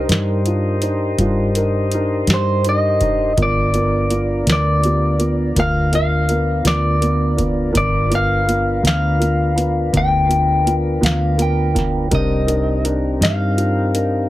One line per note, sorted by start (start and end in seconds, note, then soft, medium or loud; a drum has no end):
0.00 3.33 G4 medium
0.00 0.45 A#4 medium
0.00 3.33 A#4 medium
0.00 3.33 C5 medium
0.00 3.33 D#5 medium
0.09 1.15 G2 medium
0.09 0.37 D4 medium
0.09 0.37 D#4 medium
0.09 0.37 A#4 medium
0.09 snare loud
0.09 closed hi-hat medium
0.46 0.74 D4 medium
0.46 0.74 D#4 medium
0.46 0.74 F4 medium
0.46 closed hi-hat medium
0.82 1.10 D4 medium
0.82 1.10 D#4 medium
0.82 1.10 C5 medium
0.82 closed hi-hat medium
1.18 2.24 G2 medium
1.18 1.47 D4 medium
1.18 1.47 D#4 medium
1.18 1.47 F4 medium
1.18 kick medium
1.18 closed hi-hat medium
1.55 1.83 D4 medium
1.55 1.84 D#4 soft
1.55 1.83 A#4 medium
1.55 closed hi-hat medium
1.92 2.20 D4 medium
1.92 2.20 D#4 medium
1.92 2.21 A#4 medium
1.92 closed hi-hat medium
2.27 3.33 G2 medium
2.27 2.56 D4 medium
2.27 2.56 D#4 soft
2.27 2.56 G4 medium
2.27 snare medium
2.27 closed hi-hat medium
2.34 2.68 C5 medium
2.64 2.92 D4 soft
2.64 2.92 D#4 soft
2.64 2.93 A#4 medium
2.64 closed hi-hat medium
2.69 3.42 D#5 medium
3.01 3.29 D4 soft
3.01 3.29 D#4 soft
3.01 3.29 A#4 medium
3.01 kick medium
3.01 closed hi-hat medium
3.37 4.43 G1 medium
3.37 3.65 B3 medium
3.37 7.71 B3 medium
3.37 7.72 D4 medium
3.37 3.65 F4 medium
3.37 7.72 F4 medium
3.37 3.65 A#4 medium
3.37 7.72 A#4 medium
3.37 kick loud
3.37 closed hi-hat medium
3.43 4.51 D5 medium
3.74 4.01 B3 soft
3.74 4.01 F4 soft
3.74 4.02 A#4 medium
3.74 closed hi-hat medium
4.10 4.38 B3 soft
4.10 4.38 F4 soft
4.10 4.38 A#4 medium
4.10 closed hi-hat medium
4.47 5.52 D2 medium
4.47 4.75 B3 medium
4.47 4.75 F4 medium
4.47 4.75 A#4 medium
4.47 snare loud
4.47 closed hi-hat medium
4.52 5.59 D5 medium
4.84 5.11 B3 soft
4.84 5.11 F4 soft
4.84 5.11 G4 medium
4.84 closed hi-hat medium
5.19 5.47 B3 soft
5.19 5.47 F4 soft
5.19 5.47 A#4 medium
5.19 closed hi-hat medium
5.56 6.62 D2 medium
5.56 5.84 B3 medium
5.56 5.84 F4 soft
5.56 5.84 A#4 medium
5.56 5.94 F5 medium
5.56 kick medium
5.56 closed hi-hat medium
5.92 6.20 B3 soft
5.92 6.20 F4 soft
5.92 6.20 A#4 medium
5.92 6.67 F5 medium
5.92 closed hi-hat medium
6.29 6.57 B3 medium
6.29 6.57 F4 soft
6.29 6.57 A#4 medium
6.29 closed hi-hat medium
6.64 7.71 D2 medium
6.64 6.92 B3 medium
6.64 6.93 F4 soft
6.64 6.93 A#4 medium
6.64 7.72 D5 medium
6.64 snare medium
6.64 closed hi-hat medium
7.01 7.29 B3 medium
7.01 7.29 F4 soft
7.01 7.29 A#4 medium
7.01 closed hi-hat medium
7.37 7.66 B3 medium
7.37 7.65 F4 medium
7.37 7.65 A#4 medium
7.37 kick medium
7.37 closed hi-hat medium
7.72 8.80 G1 medium
7.72 8.01 B3 medium
7.72 12.08 D4 medium
7.72 8.01 F4 medium
7.72 12.08 F4 medium
7.72 8.01 A#4 medium
7.72 12.08 A#4 medium
7.72 12.08 B4 medium
7.72 kick loud
7.72 closed hi-hat medium
7.77 8.14 D5 medium
8.10 8.38 B3 medium
8.10 8.38 F4 soft
8.10 8.38 A#4 medium
8.10 closed hi-hat medium
8.15 8.82 F5 medium
8.47 8.75 B3 soft
8.47 8.75 F4 soft
8.47 8.75 A#4 medium
8.47 closed hi-hat medium
8.82 9.89 D2 medium
8.82 9.11 B3 medium
8.82 9.11 F4 soft
8.82 9.11 A#4 medium
8.82 closed hi-hat medium
8.87 9.91 F5 medium
8.87 snare loud
9.20 9.48 B3 soft
9.20 9.48 F4 soft
9.20 9.48 A#4 medium
9.20 closed hi-hat medium
9.56 9.84 B3 soft
9.56 9.84 F4 soft
9.56 9.84 B4 medium
9.56 closed hi-hat medium
9.92 10.99 D2 medium
9.92 10.21 B3 medium
9.92 10.21 F4 soft
9.92 10.21 A#4 medium
9.92 kick medium
9.92 closed hi-hat medium
9.97 10.74 G5 medium
10.28 10.57 B3 medium
10.28 10.57 F4 soft
10.28 10.57 A#4 medium
10.28 closed hi-hat medium
10.65 10.93 B3 medium
10.65 10.94 F4 medium
10.65 10.94 A#4 medium
10.65 closed hi-hat medium
11.01 12.08 D2 medium
11.01 11.29 B3 medium
11.01 11.29 F4 medium
11.01 11.30 A#4 medium
11.01 closed hi-hat medium
11.05 11.39 F5 medium
11.05 snare medium
11.37 11.66 B3 medium
11.37 11.66 F4 medium
11.37 11.66 A#4 medium
11.37 closed hi-hat medium
11.42 12.12 G5 medium
11.74 12.02 B3 medium
11.74 12.02 F4 medium
11.74 12.03 A#4 medium
11.74 kick medium
11.74 closed hi-hat medium
11.79 snare soft
12.11 13.17 C2 medium
12.11 14.29 C4 medium
12.11 12.39 D4 medium
12.11 12.39 D#4 medium
12.11 14.29 D#4 medium
12.11 14.29 G4 medium
12.11 12.39 A#4 medium
12.11 14.29 A#4 medium
12.11 kick loud
12.11 closed hi-hat medium
12.15 12.84 D#5 medium
12.46 12.75 D4 medium
12.46 12.75 D#4 medium
12.46 12.75 A#4 medium
12.46 closed hi-hat medium
12.84 13.12 D4 medium
12.84 13.12 D#4 medium
12.84 13.12 A#4 medium
12.84 closed hi-hat medium
13.20 14.27 G2 medium
13.20 13.49 D4 medium
13.20 13.48 D#4 medium
13.20 13.49 A#4 medium
13.20 14.29 F5 loud
13.20 closed hi-hat medium
13.25 snare loud
13.56 13.85 D4 medium
13.56 13.85 D#4 soft
13.56 13.85 F4 medium
13.56 closed hi-hat medium
13.94 14.22 D4 soft
13.94 14.22 D#4 soft
13.94 14.22 A#4 medium
13.94 closed hi-hat medium